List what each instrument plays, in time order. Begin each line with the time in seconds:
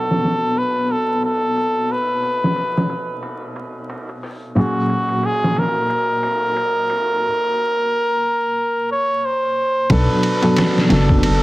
Already playing: upright piano B2 F#3 D4 A4, muted trumpet A4
0.11 snare
0.23 snare, ride
0.56 muted trumpet B4, ride
0.90 muted trumpet A4, ride
1.23 muted trumpet A4, ride
1.56 ride
1.90 muted trumpet B4, ride
2.23 ride
2.44 snare
2.56 ride
2.77 snare
2.89 ride
3.23 ride
3.56 ride
3.90 ride
4.09 ride
4.23 open hi-hat
4.55 upright piano A#2 F#3 C#4 G#4, muted trumpet F#4, ride
4.90 ride
5.09 ride
5.23 muted trumpet G#4, ride
5.44 snare
5.56 muted trumpet A#4, snare, ride
5.90 ride
6.23 ride
6.56 ride
6.90 ride
8.92 muted trumpet C#5
9.25 muted trumpet C5
9.90 detuned saw bass B1, upright piano B2 F#3 D4 A4, muted trumpet B4, kick, ride
10.23 ride
10.42 upright piano B2 F#3 D4 A4, ride
10.56 snare, ride
10.78 snare
10.89 detuned saw bass F#1, upright piano B2 F#3 D4 A4, snare, ride
11.09 kick
11.23 muted trumpet A4, ride